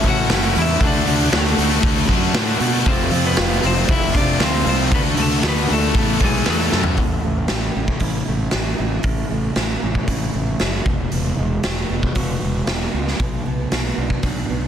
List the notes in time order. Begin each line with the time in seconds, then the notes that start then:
Already playing: A2 E3 A3
0.03 A1 A3 C#4 E4, kick, open hi-hat
0.08 F#4 F#5
0.28 F#1 E3 A3 C#4 E4, snare, open hi-hat
0.42 snare
0.54 E2 A3 C#4 E4, open hi-hat
0.58 E4 E5
0.79 D2 D3 A3 D4 F#4, kick, open hi-hat
0.83 D4 D5
1.05 D2 A3 D4 F#4, open hi-hat
1.31 D2 D3 A3 D4 F#4, snare, open hi-hat
1.37 A4
1.56 D2 D3 A3 D4 F#4, open hi-hat
1.60 A3 D4
1.83 D2, kick, open hi-hat
2.09 F#2 A3 D4 F#4, kick, open hi-hat
2.34 A2 D3 A3 D4 F#4, snare, open hi-hat
2.60 B2 A3 D4 F#4, open hi-hat
2.86 F1 F2 C3 F3 A3 C4 C5, kick, open hi-hat
2.90 F4
3.11 F2 C4 F4, open hi-hat
3.15 A3
3.25 B3 B4
3.37 F1 F3 A3 C4 F4, snare, open hi-hat
3.63 F1 C3 F3 A3 C4 F4 C5, open hi-hat
3.67 F2
3.88 F1 E4 E5, kick, open hi-hat
4.14 F1 C4 D4 F4 D5, kick, open hi-hat
4.18 A3
4.40 D2 F3 A3 C4 F4 C5, snare, open hi-hat
4.66 C2 A3 C4 F4 C5, open hi-hat
4.91 D2 D3 A3 B3 D4 F#4 B4, kick, open hi-hat
5.17 D2 A3 D4 F#4, open hi-hat
5.23 A4
5.42 D2 D3 A3 B3 D4 F#4, snare, open hi-hat
5.49 B4
5.68 D2 D3 A3 D4 F#4, open hi-hat
5.73 A3 A4
5.93 A1 A2 E3 A3 B3 E4 A4, kick, open hi-hat
5.97 A3
6.19 B1 B3 E4 A4, kick, open hi-hat
6.24 G#3 G#4
6.46 E2 A3 B3 E4 A4, snare, open hi-hat
6.50 A4
6.59 snare
6.71 F#2 A2 E3 A3 B3 E4 A4, snare
6.84 floor tom
6.97 A1 A2, kick, open hi-hat
7.24 A1 A3
7.48 A1 E4, snare, open hi-hat
7.76 A1 C#4
7.88 kick
8.00 A1 E4, kick, open hi-hat
8.28 A1 A3
8.51 A1 C#4, snare, open hi-hat
8.78 A1 E4
9.03 A1 A2, kick, open hi-hat
9.31 A1 A3
9.56 A1 E4, snare, open hi-hat
9.82 A1 C#4
9.95 kick
10.08 A1 E4, kick, open hi-hat
10.34 A1 A3
10.60 F#1 C#4, snare, open hi-hat
10.86 E1 E2, kick
11.12 E1 E2, open hi-hat
11.38 E1 G#3
11.63 E1 F#4, snare, open hi-hat
11.89 E1 B3
12.03 kick
12.15 E1 F#4, kick, open hi-hat
12.41 E1 G#3
12.67 E1 B3, snare, open hi-hat
12.94 C#2 F#4
13.08 snare
13.20 B1 B2, kick, open hi-hat
13.46 B1 B3
13.72 B1 F#4, snare, open hi-hat
13.98 B1 D4
14.10 kick
14.23 B1 F#4, kick, open hi-hat
14.49 B1 B3